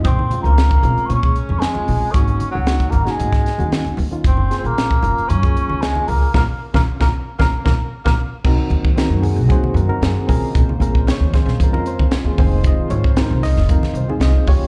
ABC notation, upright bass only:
X:1
M:4/4
L:1/16
Q:1/4=114
K:Bbm
V:1 name="Upright bass" clef=bass
B,,,2 z D,,3 B,,, z B,,2 z F,,2 z B,,, z | A,,,2 z D,,3 A,,, z A,,2 z E,,2 z E,, z | G,,,2 z B,,,3 G,,, z G,,2 z D,,2 z D,, z | B,,, z2 B,,, z B,,, z2 B,,, z B,,, z2 B,,, z2 |
C,, z E,,3 G,,2 C,, C, z G,, z G,, z B,,, z | B,,, z B,,,2 z E,,2 B,,, F,,2 z3 E,, F,,,2- | F,,, z A,,,3 C,,2 F,,, F,, z C,, z C,, z E,, z |]